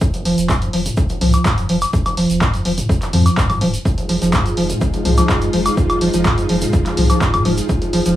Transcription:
0.01 F2, kick, shaker
0.14 F1, closed hi-hat, shaker
0.25 F1 F3, open hi-hat
0.38 F1, closed hi-hat, shaker
0.49 G2, kick, clap, shaker
0.62 F2, closed hi-hat, shaker
0.73 F1 F3, open hi-hat
0.86 closed hi-hat, mid tom, shaker
0.97 F2, kick, shaker
1.09 F1, closed hi-hat, shaker
1.21 C2 F3, mid tom, open hi-hat
1.33 closed hi-hat, high woodblock, shaker
1.45 G2, kick, clap, shaker
1.58 F1 F2, closed hi-hat, shaker
1.69 F1 F3, open hi-hat
1.81 closed hi-hat, high woodblock, shaker
1.93 F2, kick, shaker
2.06 F1, closed hi-hat, high woodblock, shaker
2.17 F1 F3, open hi-hat
2.30 F1, closed hi-hat, shaker
2.41 G2, kick, clap, shaker
2.54 F2, closed hi-hat, shaker
2.65 F1 F3, open hi-hat
2.78 closed hi-hat, mid tom, shaker
2.89 F2, kick, shaker
3.02 F1, clap, closed hi-hat, shaker
3.13 F2 F3, mid tom, open hi-hat
3.26 closed hi-hat, high woodblock, shaker
3.37 G2, kick, clap, shaker
3.50 F1 F2, closed hi-hat, mid tom, high woodblock, shaker
3.61 D#1 F3, mid tom, open hi-hat
3.74 closed hi-hat, shaker
3.85 F2 G#3 D#4 F4, kick, shaker
3.98 F1, closed hi-hat, shaker
4.09 F1 F3, open hi-hat
4.22 F1 F3, closed hi-hat, shaker
4.32 G2, kick, clap, shaker
4.46 F2, closed hi-hat, shaker
4.57 F1 F3, open hi-hat
4.70 closed hi-hat, mid tom, shaker
4.81 F2, kick, shaker
4.94 F1, closed hi-hat, shaker
5.05 C2 F3, mid tom, open hi-hat
5.18 F3, closed hi-hat, high woodblock, shaker
5.29 G2, kick, clap, shaker
5.41 F1 F2, closed hi-hat, shaker
5.53 F1 F3, open hi-hat
5.66 closed hi-hat, high woodblock, shaker
5.77 F2, kick, shaker
5.90 F1, closed hi-hat, high woodblock, shaker
6.01 F1 F3, open hi-hat
6.14 F1 F3, closed hi-hat, shaker
6.25 G2, kick, clap, shaker
6.38 F2, closed hi-hat, shaker
6.49 F1 F3, open hi-hat
6.61 closed hi-hat, mid tom, shaker
6.73 F2, kick, shaker
6.86 F1, clap, closed hi-hat, shaker
6.97 C2 F3, mid tom, open hi-hat
7.10 F3, closed hi-hat, high woodblock, shaker
7.21 G2, kick, clap, shaker
7.33 F1 F2, closed hi-hat, mid tom, high woodblock, shaker
7.45 F1 F3, mid tom, open hi-hat
7.58 closed hi-hat, shaker
7.69 F2, kick, shaker
7.82 F1, closed hi-hat, shaker
7.93 F1 F3, open hi-hat
8.05 F1 F3, closed hi-hat, shaker

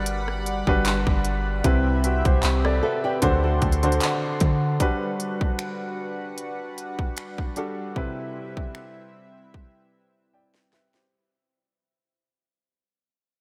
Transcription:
Already playing: G1 G3 D4 F#4 A#4 B4 D5 F#5 B5
0.06 closed hi-hat
0.28 cross-stick
0.46 closed hi-hat
0.67 G1 G3 D4 F#4 B4, kick
0.85 clap, closed hi-hat
1.07 G1, kick
1.25 closed hi-hat
1.64 C2 C3 C4 E4 G4 B4 E5, kick, closed hi-hat
2.04 F#4 B4, closed hi-hat
2.25 C2 G4 C5, kick, closed hi-hat
2.43 C2, clap, closed hi-hat
2.65 A4 D5, cross-stick
2.83 F#4 A4 B4 E5
3.04 G4 B4 D5 G5
3.22 D2 D3 D4 F#4 A4 C5 D5 F#5 C6, kick, closed hi-hat
3.43 F#4 A4
3.62 D2, kick, closed hi-hat
3.72 closed hi-hat
3.83 D3 D4 F#4 C5, closed hi-hat
3.92 closed hi-hat
4.01 clap, closed hi-hat
4.40 D3, kick, closed hi-hat
4.80 G3 D4 F#4 B4 F#5, kick, closed hi-hat
5.20 closed hi-hat
5.41 kick
5.59 finger snap, closed hi-hat
6.38 closed hi-hat
6.78 closed hi-hat
6.99 kick
7.17 finger snap, closed hi-hat
7.38 kick
7.56 G3 D4 F#4 A4, closed hi-hat
7.96 C3 C4 E4 B4 E5, kick
8.57 kick
8.75 finger snap
9.54 kick
10.34 D5 G5
10.54 snare
10.73 B4 E5, snare
10.94 G4 C5, snare

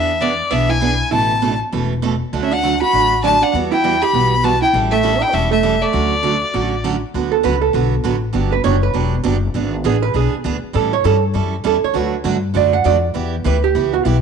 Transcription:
Already playing: E2 E3 B3 D4 G#4 E5
0.20 E3 G#3 B3 D4 G#4 D5
0.50 B1 E3 B3 D4 G#4 E5
0.69 E4 G#5
0.81 E3 B3 D4 G#4
1.11 A1 B2 E3 A3 C#4 E4 A4 A5
1.42 B2 E3 A3 C#4 A4
1.72 E1 B2 E3 A3 C#4 A4
2.02 B2 E3 A3 C#4 A4
2.33 D2 D3 F#3 A3 D4 F#4
2.42 C#4 E5
2.51 D4 F#5
2.63 D3 F#3 A3 D4 F#4
2.82 F#4 B5
2.93 A1 D3 F#3 A3 D4 F#4
3.23 D3 F#3 A3 D4 F#4 A5
3.42 D4 F#5
3.53 E2 E3 G3 B3 F#4
3.71 E4 G5
3.84 E3 G3 B3 F#4
4.02 G4 B5
4.13 B1 E3 G3 B3 F#4
4.43 E3 G3 B3 F#4 A5
4.62 E4 G5
4.73 A1 E3 G3 C#4 E4 A4
4.91 A3 E5
5.03 E3 G3 C#4 E4 A4
5.21 E4 G5
5.32 E1 E3 G3 A3 C#4 E4 A4 E5
5.51 A3 E5
5.63 E3 G3 C#4 E4 A4
5.82 A3 D5
5.93 D2 D3 F#3 A3 C#4 F#4
6.23 D3 F#3 A3 C#4 F#4
6.53 A1 D3 F#3 A3 C#4 F#4
6.84 D3 F#3 A3 C#4 F#4
7.14 D2 D3 F#3 B3 F#4 B4
7.32 A4
7.43 C#2 D3 F#3 B3 F#4 B4
7.62 A4
7.73 B1 D3 F#3 B3 F#4 B4
8.04 A1 D3 F#3 B3 F#4 B4
8.33 G1 D3 F#3 B3 D4 G4
8.52 B4
8.64 F#1 D3 F#3 B3 D4 G4 C#5
8.83 B4
8.94 E1 D3 F#3 B3 D4 G4
9.24 F#1 D3 F#3 B3 D4 G4
9.54 G#1 E3 B3 D4 G#4
9.84 A1 E3 B3 D4 G#4
10.02 B4
10.14 B1 E3 B3 D4 G#4
10.44 D2 E3 B3 D4 G#4
10.63 muted upright bass stroke
10.73 A2 E3 G3 C#4 E4 A4
10.93 C#5
11.04 G2 E3 G3 C#4 E4 A4
11.34 F#2 E3 G3 C#4 E4 A4
11.64 E2 E3 G3 C#4 E4 A4
11.83 C#5, muted upright bass stroke
11.94 D2 D3 F#3 A3 D4 F#4 B4
12.24 G2 D3 F#3 A3 D4 F#4
12.54 F#2 D3 F#3 A3 D4 F#4 D5
12.73 F#5
12.84 F2 D3 F#3 A3 D4 F#4 D5
13.14 E2 E3 B3 E4 G4
13.44 D2 E3 B3 E4 G4 B4
13.64 G4
13.75 C#2 E3 B3 E4 G4
13.94 F#4
14.05 B1 E3 B3 E4 G4

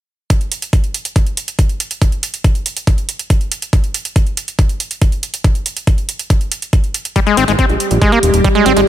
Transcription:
0.30 kick, closed hi-hat
0.41 closed hi-hat
0.52 closed hi-hat
0.62 closed hi-hat
0.73 kick, closed hi-hat
0.84 closed hi-hat
0.94 closed hi-hat
1.05 closed hi-hat
1.16 kick, closed hi-hat
1.27 closed hi-hat
1.37 closed hi-hat
1.48 closed hi-hat
1.59 kick, closed hi-hat
1.69 closed hi-hat
1.80 closed hi-hat
1.91 closed hi-hat
2.02 kick, closed hi-hat
2.12 closed hi-hat
2.23 closed hi-hat
2.34 closed hi-hat
2.44 kick, closed hi-hat
2.55 closed hi-hat
2.66 closed hi-hat
2.77 closed hi-hat
2.87 kick, closed hi-hat
2.98 closed hi-hat
3.09 closed hi-hat
3.19 closed hi-hat
3.30 kick, closed hi-hat
3.41 closed hi-hat
3.52 closed hi-hat
3.62 closed hi-hat
3.73 kick, closed hi-hat
3.84 closed hi-hat
3.94 closed hi-hat
4.05 closed hi-hat
4.16 kick, closed hi-hat
4.27 closed hi-hat
4.37 closed hi-hat
4.48 closed hi-hat
4.59 kick, closed hi-hat
4.69 closed hi-hat
4.80 closed hi-hat
4.91 closed hi-hat
5.02 kick, closed hi-hat
5.12 closed hi-hat
5.23 closed hi-hat
5.34 closed hi-hat
5.44 kick, closed hi-hat
5.55 closed hi-hat
5.66 closed hi-hat
5.77 closed hi-hat
5.87 kick, closed hi-hat
5.98 closed hi-hat
6.09 closed hi-hat
6.19 closed hi-hat
6.30 kick, closed hi-hat
6.41 closed hi-hat
6.52 closed hi-hat
6.62 closed hi-hat
6.73 kick, closed hi-hat
6.84 closed hi-hat
6.94 closed hi-hat
7.05 closed hi-hat
7.16 G3 G4, kick, closed hi-hat
7.27 G#3, closed hi-hat
7.37 G#1 C4, closed hi-hat
7.48 G#1 G#3, closed hi-hat
7.59 C4, kick, closed hi-hat
7.69 A#1, closed hi-hat
7.80 closed hi-hat
7.91 A#1, closed hi-hat
8.02 G#3, kick, closed hi-hat
8.12 A#3, closed hi-hat
8.23 D#1, closed hi-hat
8.34 D#1, closed hi-hat
8.44 G3, kick, closed hi-hat
8.55 G#3, closed hi-hat
8.66 G#1 C4, closed hi-hat
8.77 G#1 G#3, closed hi-hat

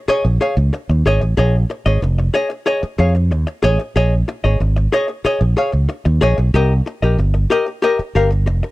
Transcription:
0.08 G#4 C#5 D#5, muted fingered electric bass stroke
0.25 A#1, muted hollow-body jazz guitar stroke
0.41 G#4 C#5 F5
0.57 C#2, muted hollow-body jazz guitar stroke
0.73 muted hollow-body jazz guitar stroke
0.89 D#2, muted hollow-body jazz guitar stroke
1.05 G#1 G#4 C#5 D#5
1.21 A1, muted hollow-body jazz guitar stroke
1.37 A#1 G#4 C#5 D#5
1.70 muted hollow-body jazz guitar stroke
1.86 G#1 G#4 C#5 D#5
2.02 F1, muted hollow-body jazz guitar stroke
2.18 muted hollow-body jazz guitar stroke
2.34 G#4 C#5 D#5
2.50 muted hollow-body jazz guitar stroke
2.66 G#4 C#5 D#5
2.83 muted hollow-body jazz guitar stroke, muted fingered electric bass stroke
2.98 F2 G#4 C#5 F5
3.15 muted hollow-body jazz guitar stroke
3.31 D#2, muted hollow-body jazz guitar stroke
3.47 muted hollow-body jazz guitar stroke
3.63 A1 G#4 C#5 D#5
3.79 muted hollow-body jazz guitar stroke
3.96 A#1 G#4 C#5 D#5
4.28 muted hollow-body jazz guitar stroke
4.44 G#1 G#4 C#5 D#5
4.60 G#1, muted hollow-body jazz guitar stroke
4.76 muted hollow-body jazz guitar stroke
4.92 G#4 C#5 D#5
5.08 muted hollow-body jazz guitar stroke
5.25 G#4 C#5 D#5, muted fingered electric bass stroke
5.41 A#1, muted hollow-body jazz guitar stroke
5.57 G#4 C#5 F5
5.72 C#2, muted hollow-body jazz guitar stroke
5.89 muted hollow-body jazz guitar stroke
6.05 D#2, muted hollow-body jazz guitar stroke
6.21 A#1 G#4 C#5 D#5
6.38 B1, muted hollow-body jazz guitar stroke
6.54 C2 G4 A#4 D#5
6.86 muted hollow-body jazz guitar stroke
7.02 A#1 G4 A#4 D#5
7.18 G1, muted hollow-body jazz guitar stroke
7.34 muted hollow-body jazz guitar stroke
7.50 G4 A#4 D#5
7.67 muted hollow-body jazz guitar stroke
7.82 G4 A#4 D#5
7.99 muted fingered electric bass stroke, muted hollow-body jazz guitar stroke
8.15 G1 G4 A#4 F5
8.31 muted hollow-body jazz guitar stroke
8.46 F1, muted hollow-body jazz guitar stroke
8.63 muted hollow-body jazz guitar stroke

